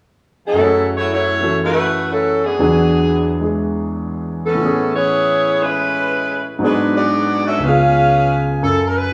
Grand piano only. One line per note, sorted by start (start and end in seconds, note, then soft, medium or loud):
0.53 2.57 F#2 soft
0.53 2.58 F#3 soft
0.59 2.60 A3 soft
0.59 2.61 E4 soft
0.64 2.59 G#4 soft
1.41 2.58 E3 soft
1.41 2.60 C#4 soft
1.41 2.60 F#4 soft
1.41 2.60 A4 soft
2.59 4.60 E2 soft
2.59 4.56 E3 soft
2.59 4.61 F#3 soft
2.59 4.61 D4 soft
2.59 3.42 G#4 soft
3.41 4.59 G#3 soft
3.41 4.60 E4 soft
3.41 4.61 G#4 soft
4.55 6.59 A2 soft
4.55 6.60 E3 soft
4.60 6.60 B3 soft
4.60 6.63 C#4 soft
4.66 6.63 G#4 soft
6.59 7.60 G#2 soft
6.59 7.61 F#3 soft
6.59 7.61 B3 soft
6.63 7.63 D4 soft
6.63 7.63 G#4 medium
7.58 8.60 C#2 soft
7.58 8.61 C#3 soft
7.63 8.63 B3 soft
7.63 8.64 F4 soft
7.69 8.66 G#4 soft
8.63 9.06 F#2 medium